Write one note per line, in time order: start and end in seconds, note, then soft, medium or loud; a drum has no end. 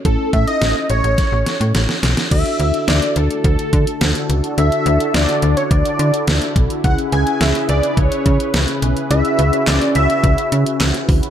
0.05 0.17 A1 loud
0.05 2.27 C#4 medium
0.05 2.27 E4 medium
0.05 2.27 A4 medium
0.05 0.31 A4 loud
0.05 kick loud
0.05 closed hi-hat medium
0.33 0.46 A2 loud
0.33 0.46 E5 loud
0.33 kick medium
0.33 closed hi-hat medium
0.47 0.87 D#5 loud
0.47 closed hi-hat soft
0.62 0.74 A1 medium
0.62 snare loud
0.62 closed hi-hat medium
0.90 1.02 A1 loud
0.90 1.99 C#5 loud
0.90 closed hi-hat medium
1.04 1.16 A1 medium
1.04 closed hi-hat medium
1.18 kick medium
1.18 snare medium
1.18 closed hi-hat medium
1.32 1.45 A1 medium
1.46 snare medium
1.46 closed hi-hat medium
1.61 1.73 A2 loud
1.61 closed hi-hat medium
1.75 1.87 A1 loud
1.75 snare medium
1.75 closed hi-hat medium
1.89 snare medium
2.03 2.15 B1 loud
2.03 snare medium
2.03 closed hi-hat medium
2.17 snare medium
2.17 closed hi-hat soft
2.31 2.44 D2 loud
2.31 6.80 D3 medium
2.31 4.54 D4 medium
2.31 6.80 D4 medium
2.31 11.30 E4 medium
2.31 4.54 F#4 medium
2.31 6.80 F#4 medium
2.31 4.54 A4 medium
2.31 6.80 A4 medium
2.31 2.89 E5 loud
2.31 kick loud
2.31 closed hi-hat medium
2.31 crash medium
2.46 closed hi-hat soft
2.60 2.72 D2 loud
2.60 closed hi-hat medium
2.74 closed hi-hat soft
2.88 3.00 D2 loud
2.88 3.18 D5 loud
2.88 snare loud
2.88 closed hi-hat medium
3.02 closed hi-hat medium
3.16 3.29 D2 loud
3.16 3.44 A4 medium
3.16 closed hi-hat medium
3.31 closed hi-hat medium
3.44 3.57 D2 loud
3.44 4.26 A4 medium
3.44 kick medium
3.44 closed hi-hat medium
3.59 closed hi-hat medium
3.73 3.85 D3 loud
3.73 kick medium
3.73 closed hi-hat medium
3.87 closed hi-hat medium
4.01 4.14 D2 loud
4.01 snare loud
4.01 closed hi-hat medium
4.15 closed hi-hat medium
4.29 4.42 C#2 medium
4.29 closed hi-hat medium
4.44 closed hi-hat soft
4.58 4.70 D2 loud
4.58 6.80 D4 medium
4.58 6.80 F#4 medium
4.58 6.80 A4 medium
4.58 5.16 E5 loud
4.58 closed hi-hat medium
4.72 closed hi-hat soft
4.86 4.98 D2 loud
4.86 closed hi-hat medium
5.00 closed hi-hat medium
5.14 5.27 D2 loud
5.14 5.56 D5 loud
5.14 snare loud
5.14 closed hi-hat medium
5.29 closed hi-hat medium
5.42 5.55 D2 loud
5.42 closed hi-hat medium
5.57 5.63 C#5 medium
5.57 closed hi-hat medium
5.71 5.83 D2 loud
5.71 6.52 D5 loud
5.71 kick medium
5.71 closed hi-hat medium
5.85 closed hi-hat medium
5.99 6.12 D3 loud
5.99 closed hi-hat medium
6.14 closed hi-hat medium
6.27 6.40 D2 loud
6.27 snare loud
6.27 closed hi-hat medium
6.42 closed hi-hat medium
6.56 6.68 B1 medium
6.56 kick medium
6.56 closed hi-hat medium
6.70 closed hi-hat soft
6.84 6.97 C#2 loud
6.84 11.30 C#3 medium
6.84 11.30 C#4 medium
6.84 9.07 C#4 medium
6.84 9.07 E4 medium
6.84 9.08 G#4 medium
6.84 9.07 G#4 medium
6.84 11.30 B4 medium
6.84 6.97 F#5 loud
6.84 kick loud
6.84 closed hi-hat medium
6.98 closed hi-hat soft
7.12 7.25 C#2 loud
7.12 7.42 G#5 loud
7.12 closed hi-hat medium
7.27 closed hi-hat medium
7.41 7.53 C#2 loud
7.41 7.69 E5 loud
7.41 snare loud
7.41 closed hi-hat medium
7.55 closed hi-hat medium
7.69 7.81 C#2 loud
7.69 7.99 D5 medium
7.69 closed hi-hat medium
7.83 closed hi-hat medium
7.97 8.10 C#2 loud
7.97 8.82 C#5 medium
7.97 kick medium
7.97 closed hi-hat medium
8.12 closed hi-hat medium
8.26 8.38 C#3 loud
8.26 kick loud
8.26 closed hi-hat medium
8.40 closed hi-hat medium
8.54 8.66 C#2 loud
8.54 snare loud
8.54 closed hi-hat medium
8.68 closed hi-hat medium
8.82 8.95 B1 medium
8.82 closed hi-hat medium
8.97 closed hi-hat medium
9.11 9.23 C#2 loud
9.11 11.30 C#4 medium
9.11 11.30 E4 medium
9.11 11.30 F#4 medium
9.11 11.30 G#4 medium
9.11 9.69 E5 loud
9.11 closed hi-hat medium
9.25 closed hi-hat soft
9.39 9.51 C#2 loud
9.39 closed hi-hat medium
9.53 closed hi-hat medium
9.67 9.80 C#2 loud
9.67 9.95 D5 loud
9.67 snare loud
9.67 clap medium
9.67 closed hi-hat medium
9.81 closed hi-hat medium
9.95 10.08 C#2 loud
9.95 10.77 E5 loud
9.95 closed hi-hat medium
10.10 closed hi-hat medium
10.24 10.36 C#2 loud
10.24 kick medium
10.24 closed hi-hat medium
10.38 closed hi-hat medium
10.52 10.64 C#3 loud
10.52 closed hi-hat medium
10.66 closed hi-hat medium
10.80 10.93 C#2 loud
10.80 snare loud
10.80 clap medium
10.80 closed hi-hat medium
10.94 closed hi-hat medium
11.09 11.21 D2 medium
11.09 kick medium
11.09 open hi-hat medium
11.23 closed hi-hat medium